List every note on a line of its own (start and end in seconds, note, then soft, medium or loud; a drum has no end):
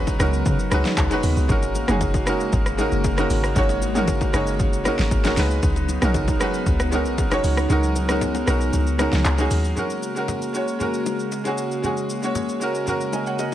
0.00 0.16 C#2 loud
0.00 9.73 C#3 medium
0.00 1.45 F#3 medium
0.00 0.18 G#3 medium
0.00 1.45 B3 medium
0.00 0.19 C#4 medium
0.00 0.20 D#4 medium
0.00 1.45 D#4 medium
0.00 1.51 F4 medium
0.00 0.21 F#4 medium
0.00 1.51 G#4 loud
0.00 0.74 B4 loud
0.07 kick medium
0.07 low bongo medium
0.07 shaker medium
0.18 0.43 C#2 loud
0.18 0.61 G#3 medium
0.18 0.61 C#4 medium
0.18 0.62 D#4 medium
0.18 0.62 F#4 medium
0.18 0.63 A#4 medium
0.18 cross-stick loud
0.18 shaker loud
0.33 shaker medium
0.46 0.58 C#3 loud
0.46 kick loud
0.46 low conga medium
0.46 shaker medium
0.59 shaker medium
0.70 0.84 C#2 loud
0.70 1.02 G#3 medium
0.70 1.03 C#4 medium
0.70 1.03 D#4 medium
0.70 1.03 F#4 medium
0.70 1.04 B4 loud
0.70 cross-stick loud
0.70 high bongo medium
0.70 low bongo medium
0.70 shaker medium
0.85 snare medium
0.85 mid tom medium
0.85 shaker soft
0.97 1.09 C#2 medium
0.97 kick loud
0.97 clap loud
0.97 high bongo medium
0.97 shaker medium
1.10 1.41 G#3 medium
1.10 1.41 C#4 medium
1.10 1.42 D#4 medium
1.10 1.42 F#4 medium
1.10 1.43 B4 loud
1.10 low bongo medium
1.10 shaker medium
1.23 1.35 D#2 medium
1.23 open hi-hat medium
1.23 shaker medium
1.37 1.48 C#2 loud
1.37 shaker medium
1.48 1.84 G#1 loud
1.48 1.80 G#3 medium
1.48 5.33 G#3 medium
1.48 5.33 A#3 medium
1.48 1.80 C#4 medium
1.48 1.81 D#4 medium
1.48 5.33 F#4 medium
1.48 1.81 F#4 medium
1.48 1.82 A#4 medium
1.48 kick loud
1.48 low conga medium
1.48 shaker medium
1.62 high bongo medium
1.62 shaker medium
1.75 low bongo medium
1.75 shaker loud
1.87 2.23 F#1 medium
1.87 2.19 G#3 medium
1.87 2.19 C#4 medium
1.87 2.20 D#4 medium
1.87 2.20 F#4 medium
1.87 2.20 G#4 medium
1.87 cross-stick loud
1.87 mid tom loud
1.87 shaker medium
2.01 kick medium
2.01 high bongo medium
2.01 low conga medium
2.01 shaker medium
2.14 kick loud
2.14 low bongo medium
2.14 shaker medium
2.25 2.68 G#3 medium
2.25 2.68 C#4 medium
2.25 2.69 D#4 medium
2.25 2.69 F#4 medium
2.25 2.70 A#4 medium
2.25 cross-stick loud
2.25 shaker medium
2.40 shaker medium
2.53 2.88 G#1 loud
2.53 kick loud
2.53 low conga medium
2.53 shaker medium
2.66 cross-stick medium
2.66 shaker medium
2.77 3.09 G#3 medium
2.77 3.10 C#4 medium
2.77 3.10 D#4 medium
2.77 3.10 F#4 medium
2.77 3.11 A#4 loud
2.77 high bongo medium
2.77 low bongo medium
2.77 shaker medium
2.92 3.26 F#1 medium
2.92 shaker soft
3.04 kick loud
3.04 high bongo medium
3.04 shaker medium
3.17 3.48 G#3 medium
3.17 3.48 C#4 medium
3.17 3.49 D#4 medium
3.17 3.49 F#4 medium
3.17 3.50 A#4 loud
3.17 cross-stick loud
3.17 low bongo medium
3.17 shaker medium
3.30 3.53 G#1 loud
3.30 open hi-hat medium
3.30 shaker loud
3.44 cross-stick medium
3.44 shaker medium
3.55 4.30 G#1 loud
3.55 3.87 G#3 medium
3.55 3.87 C#4 medium
3.55 3.88 D#4 medium
3.55 3.88 F#4 medium
3.55 3.88 C#5 loud
3.55 kick loud
3.55 low conga medium
3.55 shaker medium
3.69 high bongo medium
3.69 shaker medium
3.82 low bongo medium
3.82 shaker loud
3.94 4.26 G#3 medium
3.94 4.26 C#4 medium
3.94 4.26 D#4 medium
3.94 4.27 F#4 medium
3.94 4.27 A#4 loud
3.94 mid tom loud
3.94 shaker medium
4.08 kick medium
4.08 high bongo medium
4.08 low conga medium
4.08 shaker medium
4.21 kick loud
4.21 low bongo medium
4.21 shaker medium
4.32 4.61 F#1 loud
4.32 4.75 G#3 medium
4.32 4.75 C#4 medium
4.32 4.76 D#4 medium
4.32 4.76 F#4 medium
4.32 4.77 C#5 loud
4.32 cross-stick loud
4.32 shaker loud
4.47 shaker medium
4.59 4.95 G#1 loud
4.59 kick loud
4.59 low conga medium
4.59 shaker medium
4.73 shaker medium
4.84 5.16 G#3 medium
4.84 5.16 C#4 medium
4.84 5.17 D#4 medium
4.84 5.17 F#4 medium
4.84 5.18 A#4 loud
4.84 cross-stick medium
4.84 high bongo medium
4.84 low bongo medium
4.84 shaker medium
4.99 5.10 G#1 medium
4.99 snare medium
4.99 shaker soft
5.11 5.34 G#1 loud
5.11 kick loud
5.11 high bongo medium
5.11 shaker medium
5.23 5.34 G#3 loud
5.23 5.35 C#4 medium
5.23 5.36 D#4 medium
5.23 5.37 F#4 medium
5.23 5.38 A#4 loud
5.23 snare medium
5.23 low bongo medium
5.23 shaker medium
5.36 5.60 C#2 loud
5.36 9.73 F#3 medium
5.36 5.88 G#3 medium
5.36 9.73 B3 medium
5.36 5.89 C#4 medium
5.36 9.73 D#4 loud
5.36 5.89 D#4 medium
5.36 5.90 F#4 medium
5.36 5.90 B4 loud
5.36 snare medium
5.36 open hi-hat medium
5.36 shaker loud
5.51 shaker medium
5.63 5.98 C#2 loud
5.63 kick loud
5.63 low conga medium
5.63 shaker medium
5.76 high bongo medium
5.76 shaker medium
5.89 low bongo medium
5.89 shaker loud
6.01 6.36 B1 medium
6.01 6.32 G#3 medium
6.01 6.33 C#4 medium
6.01 6.33 D#4 medium
6.01 6.34 F#4 medium
6.01 6.34 A#4 loud
6.01 cross-stick loud
6.01 mid tom loud
6.01 shaker medium
6.14 kick medium
6.14 high bongo medium
6.14 low conga medium
6.14 shaker medium
6.28 kick loud
6.28 low bongo medium
6.28 shaker medium
6.39 6.82 G#3 medium
6.39 6.82 C#4 medium
6.39 6.83 D#4 medium
6.39 6.83 F#4 medium
6.39 6.83 B4 loud
6.39 cross-stick loud
6.39 shaker loud
6.54 shaker medium
6.66 7.07 C#2 loud
6.66 kick loud
6.66 low conga medium
6.66 shaker medium
6.80 cross-stick loud
6.80 shaker medium
6.91 7.23 G#3 medium
6.91 7.23 C#4 medium
6.91 7.24 D#4 medium
6.91 7.24 F#4 medium
6.91 7.25 A#4 loud
6.91 high bongo medium
6.91 low bongo medium
6.91 shaker medium
7.06 7.40 B1 medium
7.06 shaker soft
7.18 kick loud
7.18 high bongo medium
7.18 shaker medium
7.30 7.62 G#3 medium
7.30 7.62 C#4 medium
7.30 7.63 D#4 medium
7.30 7.63 F#4 medium
7.30 7.63 C#5 loud
7.30 cross-stick loud
7.30 low bongo medium
7.30 shaker medium
7.44 7.67 C#2 medium
7.44 open hi-hat medium
7.44 shaker loud
7.57 cross-stick loud
7.57 shaker medium
7.69 8.44 C#2 loud
7.69 8.00 G#3 medium
7.69 8.01 C#4 medium
7.69 8.01 D#4 medium
7.69 8.02 F#4 medium
7.69 8.02 A#4 loud
7.69 low conga medium
7.69 shaker medium
7.83 shaker medium
7.96 low bongo medium
7.96 shaker loud
8.08 8.39 G#3 medium
8.08 8.40 C#4 medium
8.08 8.40 D#4 medium
8.08 8.41 F#4 medium
8.08 8.41 A#4 medium
8.08 cross-stick loud
8.08 shaker medium
8.21 high bongo medium
8.21 low conga medium
8.21 shaker medium
8.35 low bongo medium
8.35 shaker medium
8.46 8.70 B1 loud
8.46 8.89 G#3 medium
8.46 8.89 C#4 medium
8.46 8.89 D#4 medium
8.46 8.90 F#4 medium
8.46 8.90 A#4 medium
8.46 cross-stick loud
8.46 shaker loud
8.61 shaker medium
8.73 9.08 C#2 loud
8.73 low conga medium
8.73 shaker medium
8.87 shaker medium
8.98 9.30 G#3 medium
8.98 9.30 C#4 medium
8.98 9.31 D#4 medium
8.98 9.31 F#4 medium
8.98 9.32 A#4 medium
8.98 cross-stick loud
8.98 high bongo medium
8.98 low bongo medium
8.98 shaker medium
9.12 9.24 C#2 medium
9.12 snare medium
9.12 mid tom medium
9.12 shaker soft
9.25 9.48 C#2 loud
9.25 clap medium
9.25 high bongo medium
9.25 shaker medium
9.37 9.69 G#3 medium
9.37 9.69 C#4 medium
9.37 9.70 D#4 medium
9.37 9.70 F#4 medium
9.37 9.70 G#4 loud
9.37 low bongo medium
9.37 shaker medium
9.51 9.74 D#2 medium
9.51 open hi-hat medium
9.51 shaker medium
9.64 shaker medium
9.75 13.54 C#3 medium
9.75 10.07 G#3 medium
9.75 13.54 G#3 medium
9.75 13.54 A#3 medium
9.75 10.08 C#4 medium
9.75 13.54 F#4 medium
9.75 10.09 F#4 medium
9.75 10.09 A#4 medium
9.75 low conga medium
9.75 shaker medium
9.90 shaker medium
10.03 shaker medium
10.15 10.46 G#3 medium
10.15 10.47 C#4 medium
10.15 10.47 F#4 medium
10.15 10.48 A#4 medium
10.15 shaker medium
10.28 high bongo medium
10.28 low conga medium
10.28 shaker medium
10.42 shaker medium
10.53 10.74 G#3 medium
10.53 10.75 C#4 medium
10.53 10.76 F#4 medium
10.53 10.76 C#5 medium
10.53 shaker medium
10.68 shaker medium
10.79 11.31 G#3 medium
10.79 11.32 C#4 medium
10.79 11.32 F#4 medium
10.79 11.33 A#4 medium
10.79 low conga medium
10.79 shaker medium
10.94 shaker medium
11.06 high bongo soft
11.06 low bongo medium
11.06 shaker medium
11.19 shaker soft
11.32 high bongo medium
11.32 shaker medium
11.44 11.75 G#3 medium
11.44 11.76 C#4 medium
11.44 11.77 F#4 medium
11.44 11.77 G#4 medium
11.44 low bongo medium
11.44 shaker medium
11.58 shaker medium
11.71 shaker soft
11.82 12.14 G#3 medium
11.82 12.15 C#4 medium
11.82 12.15 F#4 medium
11.82 12.16 G#4 medium
11.82 low conga medium
11.82 shaker medium
11.97 shaker medium
12.10 shaker medium
12.22 12.53 G#3 medium
12.22 12.54 C#4 medium
12.22 12.54 F#4 medium
12.22 12.55 C#5 medium
12.22 shaker medium
12.35 high bongo medium
12.35 low conga medium
12.35 shaker medium
12.49 shaker medium
12.60 12.81 G#3 medium
12.60 12.82 C#4 medium
12.60 12.83 F#4 medium
12.60 12.83 A#4 medium
12.60 shaker medium
12.75 shaker medium
12.86 13.38 G#3 medium
12.86 13.39 C#4 medium
12.86 13.39 F#4 medium
12.86 13.14 A#4 medium
12.86 low conga medium
12.86 shaker medium
13.01 shaker medium
13.13 13.26 D#5 medium
13.13 13.26 G#5 medium
13.13 high bongo soft
13.13 low bongo medium
13.13 shaker medium
13.26 13.39 C#5 medium
13.26 13.38 F#5 medium
13.26 shaker soft
13.39 13.52 A#4 medium
13.39 13.52 D#5 medium
13.39 high bongo medium
13.39 shaker medium